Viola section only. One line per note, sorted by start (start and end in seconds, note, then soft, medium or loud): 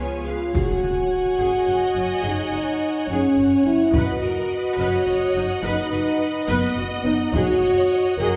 0.00 0.24 F4 soft
0.00 0.25 C#5 soft
0.26 0.53 G#4 soft
0.26 0.55 B4 soft
0.54 0.81 G#4 soft
0.54 3.90 C#5 soft
0.82 0.90 F#4 soft
1.38 1.65 G#4 medium
1.66 1.74 F#4 soft
1.95 2.03 C#4 soft
2.23 2.50 G#4 medium
2.52 2.60 F#4 soft
3.09 3.36 G#4 medium
3.37 3.45 F#4 soft
3.65 3.73 C#4 soft
3.93 4.20 B4 medium
3.93 8.14 D#5 medium
4.22 4.30 F#4 soft
4.79 5.05 B4 medium
5.08 5.16 F#4 medium
5.37 5.45 D#4 medium
5.63 5.90 B4 medium
5.92 6.00 F#4 soft
6.49 6.75 B4 medium
6.77 6.85 F#4 medium
7.06 7.14 D#4 soft
7.35 7.60 G#4 medium
7.62 7.70 F#4 soft
8.19 8.36 G#4 medium
8.19 8.36 C#5 medium